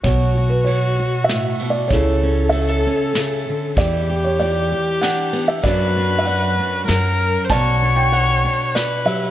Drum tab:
RD |x-x-xx|x-x-x-|x-x-xx|x-x-x-|
SD |----o-|----o-|----o-|----o-|
BD |o-----|o-----|o-----|o-----|

RD |x-x-xx|
SD |----o-|
BD |o-----|